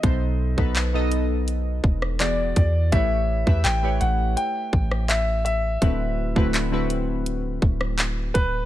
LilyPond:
<<
  \new Staff \with { instrumentName = "Grand piano" } { \time 4/4 \key a \dorian \tempo 4 = 83 dis''4. r4. d''8 d''8 | e''4 g''8 fis''8 g''4 e''8 e''8~ | e''4. r2 b'8 | }
  \new Staff \with { instrumentName = "Synth keys" } { \time 4/4 \key a \dorian <b, b dis' a' c''>8 r16 <b, b dis' a' b'>16 r16 <b, b dis' a' dis''>4~ <b, b dis' a' dis''>16 r8 <e b fis' gis' d''>8. r16 | <a e' g' b' cis''>8 r16 <a e' g' b' e''>16 r16 <a e' g' b' cis''>4~ <a e' g' b' cis''>16 r4. | <d a c' e' fis' b'>8 r16 <d a c' e' fis' b'>16 r16 <d a c' e' fis' b'>4~ <d a c' e' fis' b'>16 r4. | }
  \new Staff \with { instrumentName = "808-style bass" } { \clef bass \time 4/4 \key a \dorian b,,8. b,,4.~ b,,16 e,,4 e,8 | a,,8. e,16 a,,8 a,,8 r8 a,,4. | d,,8. d,,4.~ d,,16 d,,4 d,,8 | }
  \new DrumStaff \with { instrumentName = "Drums" } \drummode { \time 4/4 <hh bd>8. bd16 <hc hh>8 hh8 hh8 bd16 ss16 <hc hh>8 <hh bd>8 | <hh bd>8. bd16 <hc hh>8 hh8 hh8 bd16 ss16 <hc hh>8 hh8 | <hh bd>8. bd16 <hc hh>8 hh8 hh8 bd16 ss16 <hc hh>8 <hh bd>8 | }
>>